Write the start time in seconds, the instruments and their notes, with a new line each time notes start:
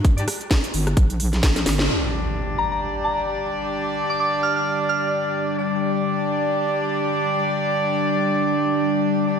Already playing: wobble bass G2
0.05 kick, closed hi-hat
0.18 horn section G3 D4 G4 D5, closed hi-hat
0.28 cross-stick, open hi-hat
0.41 closed hi-hat
0.51 kick, snare, closed hi-hat
0.64 closed hi-hat
0.74 wobble bass G1, open hi-hat
0.87 cross-stick, closed hi-hat
0.97 wobble bass A#1, kick, closed hi-hat
1.10 closed hi-hat
1.20 open hi-hat
1.33 snare, closed hi-hat
1.43 wobble bass A#1, kick, snare, closed hi-hat
1.56 snare, closed hi-hat
1.66 wobble bass G1, snare, open hi-hat
1.79 snare
1.89 ambient pad G3 D4 D5, horn section G3 D4 G4 D5, impact
2.58 synth bell A#5
2.72 synth bell A#5
3.04 synth bell A#5
4.10 synth bell D6
4.20 synth bell D6
4.43 synth bell F6
4.56 synth bell F6
4.89 synth bell F6
5.58 horn section G3 D4 G4 D5
9.28 horn section G3 D4 G4 D5